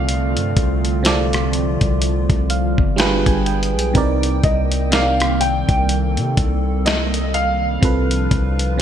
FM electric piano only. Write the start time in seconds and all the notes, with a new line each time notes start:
Already playing: C3 C4 F4 A4 D5
1.03 C3 C4 F4 A4
1.07 D5
2.50 F5
2.96 G3 D4 F4 G#4 G5
3.01 B4
3.27 G#5
3.47 G5
3.93 C3 C4 D#4 A#4
3.98 D5
4.90 C3 C4 D#4 A#4
4.95 D5
7.81 C3 C4 F4 A4
7.85 B4
8.78 C3 C4